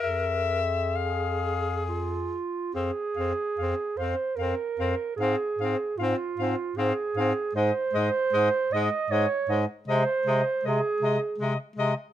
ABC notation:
X:1
M:3/4
L:1/8
Q:1/4=76
K:Fm
V:1 name="Soprano saxophone"
=e2 f2 z2 | f f f f f f | f f f f f f | e e e e e e |
e e e e e e |]
V:2 name="Clarinet"
A4 F2 | A3 c B2 | A2 F2 A2 | c3 e d z |
c2 A2 z2 |]
V:3 name="Tenor saxophone"
B z A3 z | C C C C C C | C C C C C C | A, A, A, A, A, A, |
A, A, A, A, A, A, |]
V:4 name="Bass clarinet" clef=bass
F,,4- F,, z | F,, F,, F,, F,, F,, F,, | A,, A,, A,, A,, A,, A,, | A,, A,, A,, A,, A,, A,, |
C, C, C, C, C, C, |]